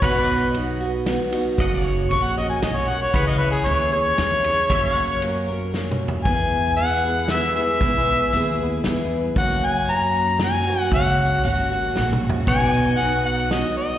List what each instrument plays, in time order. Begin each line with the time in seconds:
0.02 upright bass B1, steel-string acoustic guitar B2 F#3 B3 D#4 F#4, harmonica B4, pedal steel guitar C#5 F#5, kick, ride
0.29 pedal steel guitar D#5
0.54 steel-string acoustic guitar F#3 B3 D#4 F#4, ride
0.80 steel-string acoustic guitar B3 D#4 F#4
1.06 steel-string acoustic guitar F#3 B3 D#4 F#4, snare, ride
1.32 steel-string acoustic guitar B3 D#4 F#4, ride
1.58 upright bass F#1, steel-string acoustic guitar F#2 C#3 F#3 A#3 C#4 F#4, pedal steel guitar D#5 F#5, kick, ride
1.85 pedal steel guitar C#5
2.11 upright bass A#1, steel-string acoustic guitar F#3 A#3 C#4 F#4, harmonica C#6, ride
2.24 harmonica F#5
2.37 steel-string acoustic guitar F#3 A#3 C#4 F#4, harmonica D#5
2.50 harmonica G#5
2.62 upright bass B1, steel-string acoustic guitar F#3 A#3 C#4 F#4, harmonica D#5, snare, ride
2.77 harmonica C#5
2.88 steel-string acoustic guitar F#3 A#3 C#4 F#4, harmonica F#5
3.02 harmonica C#5
3.14 upright bass C#2, steel-string acoustic guitar C#3 E3 C#4 E4 G#4, harmonica B4, pedal steel guitar C#5 F#5, kick, ride
3.27 harmonica D#5
3.38 harmonica B4, pedal steel guitar E5
3.52 harmonica G#4
3.65 upright bass D#2, steel-string acoustic guitar E3 C#4 E4 G#4, harmonica C#5, ride
3.92 steel-string acoustic guitar C#4 E4 G#4, harmonica C#5
4.18 upright bass E2, steel-string acoustic guitar E3 C#4 E4 G#4, snare, ride
4.44 steel-string acoustic guitar C#4 E4 G#4, ride
4.70 upright bass F#2, steel-string acoustic guitar F#2 C#3 F#3 A#3 C#4 A#4, pedal steel guitar C#5 E5, kick, ride
4.97 pedal steel guitar F#5
5.22 steel-string acoustic guitar F#3 A#3 C#4 A#4, ride
5.48 steel-string acoustic guitar F#3 A#3 C#4 A#4
5.73 steel-string acoustic guitar F#3 A#3 C#4 A#4, snare
5.91 mid tom
6.08 floor tom
6.25 upright bass E2, steel-string acoustic guitar E3 B3 E4 G#4, string section G#3 E4 G#4 B4, harmonica G#5, kick, closed hi-hat
6.77 steel-string acoustic guitar E3 B3 E4 G#4, harmonica F#5, closed hi-hat
7.04 steel-string acoustic guitar B3 E4 G#4
7.28 steel-string acoustic guitar E3 B3 E4, harmonica E5, snare, closed hi-hat
7.33 steel-string acoustic guitar G#4
7.56 steel-string acoustic guitar B3 E4 G#4, harmonica E5
7.81 upright bass B1, steel-string acoustic guitar E3 B3 E4 G#4, kick, closed hi-hat
8.33 upright bass D#2, steel-string acoustic guitar E3 B3 E4 G#4, closed hi-hat
8.59 steel-string acoustic guitar B3 E4 G#4
8.84 upright bass E2, steel-string acoustic guitar E3 B3 E4, snare, closed hi-hat
8.88 steel-string acoustic guitar G#4
9.36 upright bass F#2, steel-string acoustic guitar F#2 C#3 F#3 A#3 C#4 F#4, string section A#3 C#4 F#4, harmonica F#5, kick, closed hi-hat
9.65 harmonica G#5
9.87 steel-string acoustic guitar F#3 A#3 C#4, harmonica A#5, closed hi-hat
9.91 steel-string acoustic guitar F#4
10.39 steel-string acoustic guitar F#3 A#3 C#4 F#4, snare, closed hi-hat
10.44 harmonica G#5
10.67 steel-string acoustic guitar F#3 A#3 C#4 F#4
10.91 upright bass C#2, steel-string acoustic guitar F#2 C#3 F#3 A#3 C#4 F#4, harmonica F#5, kick, closed hi-hat
11.43 upright bass G#1, steel-string acoustic guitar F#3 A#3 C#4 F#4, harmonica F#5, closed hi-hat
11.70 steel-string acoustic guitar F#3 A#3 C#4 F#4
11.95 upright bass A#1, steel-string acoustic guitar F#3 A#3 C#4 F#4, snare
12.12 mid tom
12.29 floor tom
12.47 upright bass B1, steel-string acoustic guitar B2 F#3 B3 D#4 F#4, string section B3 D#4, pedal steel guitar C#5 F#5, harmonica G#5, kick, closed hi-hat
12.73 pedal steel guitar D#5
12.98 steel-string acoustic guitar F#3 B3 D#4 F#4, harmonica F#5, closed hi-hat
13.25 harmonica F#5
13.50 steel-string acoustic guitar F#3 B3 D#4 F#4, harmonica D#5, snare, closed hi-hat
13.78 harmonica D#5